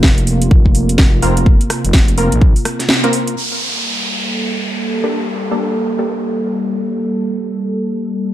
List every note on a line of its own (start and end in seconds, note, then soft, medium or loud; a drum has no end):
0.00 3.33 C3 medium
0.00 3.33 A#3 medium
0.00 3.33 F4 medium
0.00 kick loud
0.00 snare loud
0.18 closed hi-hat medium
0.27 open hi-hat loud
0.42 closed hi-hat medium
0.51 kick loud
0.66 kick medium
0.75 open hi-hat loud
0.89 closed hi-hat medium
0.98 1.21 F1 medium
0.98 kick loud
0.98 snare loud
1.22 1.58 F1 loud
1.22 1.45 A#3 medium
1.22 1.45 C4 medium
1.22 1.45 F4 medium
1.22 1.45 A#4 loud
1.22 open hi-hat loud
1.37 closed hi-hat medium
1.46 kick loud
1.61 closed hi-hat medium
1.70 cross-stick medium
1.70 open hi-hat loud
1.85 2.30 F1 loud
1.85 closed hi-hat medium
1.93 kick loud
1.93 snare loud
1.93 open hi-hat medium
2.08 closed hi-hat medium
2.18 2.34 A#3 medium
2.18 2.34 C4 medium
2.18 2.34 F4 medium
2.18 2.34 A#4 medium
2.18 open hi-hat loud
2.32 2.54 A#1 loud
2.32 closed hi-hat medium
2.42 kick loud
2.56 open hi-hat medium
2.65 cross-stick medium
2.65 open hi-hat loud
2.79 snare soft
2.79 closed hi-hat medium
2.89 snare loud
3.04 3.36 A#3 medium
3.04 3.36 C4 medium
3.04 3.36 F4 medium
3.04 3.36 A#4 loud
3.04 closed hi-hat soft
3.13 open hi-hat loud
3.27 closed hi-hat medium
3.37 8.34 G3 medium
3.37 8.34 A#3 medium
3.37 8.34 A4 medium
3.37 crash medium
3.37 downlifter medium
5.03 5.26 A#3 medium
5.03 5.26 D4 medium
5.03 5.26 G4 medium
5.03 5.26 A4 loud
5.51 5.67 A#3 medium
5.51 5.67 D4 medium
5.51 5.67 G4 medium
5.51 5.67 A4 loud
5.99 6.15 A#3 medium
5.99 6.15 D4 medium
5.99 6.15 G4 medium
5.99 6.15 A4 medium